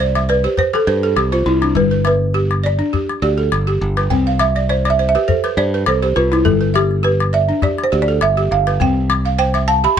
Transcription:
Already playing: fingered electric bass C2, balafon D5 E5
0.00 balafon C5 D5
0.15 balafon E5, calabash click
0.29 balafon B4 D5
0.44 balafon G4 C5
0.57 balafon B4 C5, calabash thump, calabash click
0.73 balafon A4, calabash click
0.87 fingered electric bass G2, balafon B4 C5
1.03 balafon A4
1.16 fingered electric bass C2, balafon G4, calabash click
1.32 balafon F4 C5, calabash click
1.46 fingered electric bass C2, balafon E4, calabash click
1.62 balafon D4, calabash click
1.75 fingered electric bass G1, balafon G3 B4, calabash thump, calabash click
1.91 balafon B4
2.05 balafon B4 E5, calabash click
2.34 balafon G4, calabash click
2.51 calabash click
2.64 balafon D5
2.79 balafon D4
2.93 balafon G4, calabash thump, calabash click
3.09 calabash click
3.22 fingered electric bass D2, balafon G4 D5
3.38 balafon A4
3.52 fingered electric bass G1, calabash click
3.67 balafon G4, calabash click
3.81 fingered electric bass G1, calabash click
3.97 balafon B4, calabash click
4.10 fingered electric bass C2, balafon C4 G5, calabash thump
4.27 balafon F5
4.39 balafon E5, calabash click
4.56 balafon D5, calabash click
4.69 balafon C5 D5
4.85 balafon D5, calabash click
4.90 balafon E5
4.99 balafon C5
5.09 balafon E5
5.15 balafon G4 B4, calabash click
5.28 balafon A4 C5, calabash thump
5.44 balafon B4, calabash click
5.57 fingered electric bass G2, balafon C5 D5, calabash click
5.74 balafon B4
5.86 fingered electric bass C2, balafon A4 C5, calabash click
6.02 balafon G4 C5
6.16 fingered electric bass C2, balafon F4 B4, calabash click
6.32 balafon E4, calabash click
6.45 fingered electric bass G1, balafon G3 A4, calabash thump, calabash click
6.61 balafon B4
6.74 balafon G4 E5, calabash click
6.91 calabash click
7.03 balafon G4 B4, calabash click
7.20 calabash click
7.33 balafon D5 E5
7.49 balafon D4
7.62 balafon G4 D5, calabash thump, calabash click
7.78 calabash click
7.84 balafon C5
7.92 fingered electric bass D2, balafon G4 D5
8.02 balafon D5
8.08 balafon A4
8.21 fingered electric bass G1, balafon E5, calabash click
8.37 balafon G4, calabash click
8.51 fingered electric bass G1, balafon F5, calabash click
8.67 balafon B4, calabash click
8.80 fingered electric bass C2, balafon C4 G5, calabash thump, calabash click
9.10 calabash click
9.25 balafon F5, calabash click
9.38 balafon C5 G5, calabash click
9.54 balafon E5, calabash click
9.68 balafon F5 A5
9.84 balafon G4 E5 B5

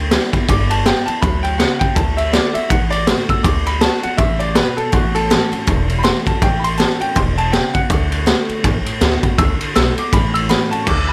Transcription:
Already playing: upright bass D2, steel-string acoustic guitar D3, upright piano G5
0.11 steel-string acoustic guitar G3 B3 E4, snare, ride
0.33 steel-string acoustic guitar B3 E4, kick, ride
0.48 upright bass G1, steel-string acoustic guitar G3, upright piano D6, kick, ride
0.70 upright piano A5, ride
0.86 steel-string acoustic guitar G3 B3 E4, upright piano G5, snare, ride
1.06 steel-string acoustic guitar B3 E4, upright piano A5, muted upright bass stroke, ride
1.22 upright bass D2, steel-string acoustic guitar F#3, upright piano B5, kick, ride
1.43 upright piano G5, ride
1.58 steel-string acoustic guitar C#3, upright piano F#5, snare, ride
1.79 upright piano G5, kick, ride
1.95 upright bass D2, steel-string acoustic guitar D3, upright piano A5, kick, ride
2.17 upright piano E5, ride
2.33 steel-string acoustic guitar D3 A3 B3 F#4, upright piano D5, snare, ride
2.54 steel-string acoustic guitar B3 F#4, upright piano E5, muted upright bass stroke, ride
2.69 upright bass A1, steel-string acoustic guitar A2, upright piano F#5, kick, ride
2.90 upright piano D5, ride
3.07 steel-string acoustic guitar D3 A3 B3 F#4, snare, ride
3.29 steel-string acoustic guitar B3 F#4, upright piano E6, kick, ride
3.43 upright bass D2, steel-string acoustic guitar D3, upright piano D6, kick, ride
3.66 upright piano B5, ride
3.81 steel-string acoustic guitar D3 A3 B3 F#4, upright piano A5, snare, ride
4.03 steel-string acoustic guitar B3 F#4, upright piano F#5, muted upright bass stroke, ride
4.17 upright bass A1, steel-string acoustic guitar C#3, upright piano E5, kick, ride
4.39 upright piano D5, ride
4.55 steel-string acoustic guitar B2, upright piano B4, snare, ride
4.77 upright piano A4, muted upright bass stroke, ride
4.92 upright bass A1, steel-string acoustic guitar A2, upright piano F#4, kick, ride
5.15 upright piano A4, ride
5.30 steel-string acoustic guitar E3 A3 C#4 F#4, snare, ride
5.52 steel-string acoustic guitar C#4 F#4, muted upright bass stroke, ride
5.67 upright bass E1, steel-string acoustic guitar E2, kick, ride
5.89 ride
5.99 upright piano B5
6.03 steel-string acoustic guitar E3 A3 C#4 F#4, upright piano C6, snare, ride
6.26 steel-string acoustic guitar C#4 F#4, upright piano A5, muted upright bass stroke, kick, ride
6.42 upright bass A1, steel-string acoustic guitar A2, upright piano G5, kick, ride
6.60 upright piano B5
6.64 upright piano C6, ride
6.78 steel-string acoustic guitar E3 A3 C#4 F#4, upright piano A5, snare, ride
7.00 steel-string acoustic guitar C#4 F#4, upright piano G5, muted upright bass stroke, ride
7.16 upright bass E1, steel-string acoustic guitar B2, upright piano C6, kick, ride
7.38 upright piano A5, ride
7.52 steel-string acoustic guitar C#3, upright piano G5, snare, ride
7.74 upright piano F#5, muted upright bass stroke, kick, ride
7.90 upright bass D2, steel-string acoustic guitar D3, kick, ride
8.12 ride
8.26 steel-string acoustic guitar D3 A3 B3 F#4, snare, ride
8.49 muted upright bass stroke, ride
8.64 upright bass A1, steel-string acoustic guitar A2, kick, ride
8.86 muted upright bass stroke, ride
9.01 upright bass D2, steel-string acoustic guitar D3 A3 B3 F#4, snare, ride
9.23 steel-string acoustic guitar B3 F#4, kick, ride
9.38 upright bass C#2, steel-string acoustic guitar D3, upright piano E6, kick, ride
9.60 muted upright bass stroke, ride
9.75 upright bass B1, steel-string acoustic guitar D3 A3 B3 F#4, upright piano E6, snare, ride
9.97 steel-string acoustic guitar B3 F#4, upright piano D6, muted upright bass stroke, ride
10.13 upright bass A1, steel-string acoustic guitar A2, upright piano B5, kick, ride
10.34 upright piano E6, ride
10.49 steel-string acoustic guitar E3 A3 C#4 F#4, upright piano B5, snare, ride
10.71 steel-string acoustic guitar C#4 F#4, upright piano A5, muted upright bass stroke, ride
10.83 upright piano C#6
10.87 upright bass D2, steel-string acoustic guitar D3, upright piano D6, kick, crash
11.09 upright piano B5

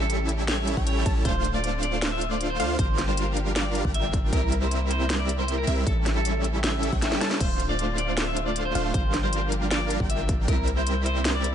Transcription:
Already playing: 808-style bass A1, string section C#3 A3 G4, supersaw synth G3 C#4 E4 A4 E5, synth pluck E5
0.00 clean electric guitar A4
0.10 closed hi-hat
0.29 closed hi-hat
0.48 clean electric guitar C#5, snare, closed hi-hat
0.67 closed hi-hat
0.77 808-style bass A1, supersaw synth G3 C#4 G5, synth pluck G5, kick
0.87 clean electric guitar C#5, closed hi-hat
1.06 808-style bass A1, supersaw synth G3 C#4 E4 A4 A5, synth pluck A5, kick, closed hi-hat
1.25 808-style bass D1, string section D3 C4 F4, supersaw synth A3 D4 F4 C5 F5, clean electric guitar C5, synth pluck F5, kick, closed hi-hat
1.44 closed hi-hat
1.54 clean electric guitar D5
1.64 closed hi-hat
1.83 clean electric guitar D5, closed hi-hat
2.02 snare, closed hi-hat
2.12 clean electric guitar E5
2.21 closed hi-hat
2.31 clean electric guitar D5
2.41 closed hi-hat
2.50 clean electric guitar C5
2.60 808-style bass D2, supersaw synth A3 D4 F4 C5 F5, synth pluck F5, closed hi-hat
2.79 808-style bass G1, string section F3 A#3 G4, supersaw synth G3 A#4 F5, clean electric guitar C5, synth pluck F5, kick, closed hi-hat
2.98 snare, closed hi-hat
3.08 clean electric guitar C5
3.17 closed hi-hat
3.37 closed hi-hat
3.56 clean electric guitar D5, snare, closed hi-hat
3.75 closed hi-hat
3.85 808-style bass G1, supersaw synth G3, synth pluck G5, kick
3.94 clean electric guitar E5, closed hi-hat
4.13 kick, closed hi-hat
4.33 808-style bass C2, string section C3 A#3 E4, supersaw synth G3 C4 E4 A#4 E5, clean electric guitar A#4, synth pluck E5, kick, closed hi-hat
4.52 closed hi-hat
4.62 clean electric guitar C5
4.71 closed hi-hat
4.91 clean electric guitar C5, closed hi-hat
5.10 snare, closed hi-hat
5.19 clean electric guitar D5
5.29 closed hi-hat
5.39 clean electric guitar C5
5.48 closed hi-hat
5.58 clean electric guitar A#4
5.67 808-style bass C2, supersaw synth G3 C4 E4 A#4 E5, synth pluck E5, closed hi-hat
5.86 808-style bass A1, string section C#3 A3 G4, supersaw synth C#4 E4 A4 E5, clean electric guitar A4, synth pluck E5, kick, closed hi-hat
6.06 snare, closed hi-hat
6.16 clean electric guitar A4
6.25 closed hi-hat
6.44 closed hi-hat
6.64 clean electric guitar E5, snare, closed hi-hat
6.83 closed hi-hat
6.92 808-style bass A1, supersaw synth G3 E4 A4, synth pluck G5, kick
7.02 clean electric guitar E5, snare, closed hi-hat
7.12 snare
7.21 supersaw synth G3 C#4 E4 A4 A5, synth pluck A5, snare, closed hi-hat
7.31 snare
7.40 808-style bass D1, string section D3 C4 F4, supersaw synth A3 D4 F4 C5, clean electric guitar C5, synth pluck F5, kick, closed hi-hat, crash
7.60 closed hi-hat
7.69 clean electric guitar D5
7.79 closed hi-hat
7.98 clean electric guitar D5, closed hi-hat
8.17 snare, closed hi-hat
8.27 clean electric guitar E5
8.37 closed hi-hat
8.46 clean electric guitar D5
8.56 closed hi-hat
8.65 clean electric guitar C5
8.75 808-style bass D1, supersaw synth A3 D4 F4 C5 F5, synth pluck F5, closed hi-hat
8.94 808-style bass G1, string section F3 A#3 G4, supersaw synth G3, clean electric guitar C5, synth pluck F5, kick, closed hi-hat
9.14 snare, closed hi-hat
9.23 clean electric guitar C5
9.33 closed hi-hat
9.52 closed hi-hat
9.71 clean electric guitar D5, snare, closed hi-hat
9.90 closed hi-hat
10.00 808-style bass G1, supersaw synth G3 A#4 G5, synth pluck G5, kick
10.10 clean electric guitar E5, closed hi-hat
10.29 kick, closed hi-hat
10.48 808-style bass C2, string section C3 E4, supersaw synth G3 C4 E4 A#4 E5, clean electric guitar A#4, synth pluck E5, kick, closed hi-hat
10.67 closed hi-hat
10.77 clean electric guitar C5
10.87 closed hi-hat
11.06 clean electric guitar C5, closed hi-hat
11.25 snare, closed hi-hat
11.35 clean electric guitar D5
11.44 closed hi-hat

